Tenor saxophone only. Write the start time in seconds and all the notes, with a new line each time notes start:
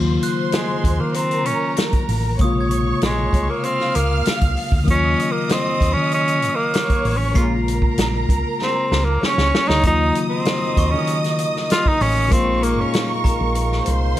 0.54 G#3
1.00 A#3
1.16 C4
1.46 C#4
3.04 G#3
3.49 A#3
3.65 C4
3.96 A#3
4.91 C#4
5.32 A#3
5.52 C4
5.93 C#4
6.14 C#4
6.56 A#3
7.17 C#4
8.63 C4
9.05 A#3
9.25 C#4
9.68 D#4
9.87 D#4
10.29 C4
10.91 C#4
11.72 F4
11.88 D#4
12.02 C#4
12.32 C4
12.64 A#3
12.81 C#4